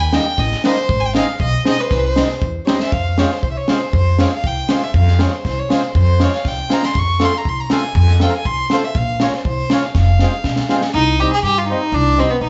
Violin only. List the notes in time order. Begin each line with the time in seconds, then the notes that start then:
0.00 G#5
0.13 G5
0.39 D#5
0.66 C5
1.00 G#5
1.05 G5
1.16 F5
1.42 D#5
1.69 D#5
1.80 B4 C5
1.89 B4
1.93 C5
1.98 B4
2.08 C5
2.65 C5 C#5
2.79 E5
2.93 F5
3.19 C#5
3.32 C5
3.43 C5
3.51 E5
3.57 C#5
3.71 C5
3.94 C5
4.20 C#5
4.33 F5
4.47 G5
4.70 C5
4.83 E5
4.97 F5
5.23 C#5
5.34 C5
5.47 C5
5.59 C#5
5.74 C5
5.98 C5
6.23 C#5
6.36 F5
6.48 G5
6.73 A#5
6.85 C6
6.99 C#6
7.24 C6
7.37 A#5
7.49 C6
7.60 A#5
7.73 G#5
7.98 G#5
8.22 G5
8.30 A#5
8.35 G#5
8.46 C6
8.73 C5
8.84 E5
8.97 F5
9.22 C#5
9.35 C5
9.47 C5
9.73 C#5
9.85 F5
9.98 F5
10.94 D#4
11.20 G4
11.33 G#4
11.45 G4
11.58 F4
11.69 D#4
11.94 D4
12.20 C4
12.30 B3
12.44 D#4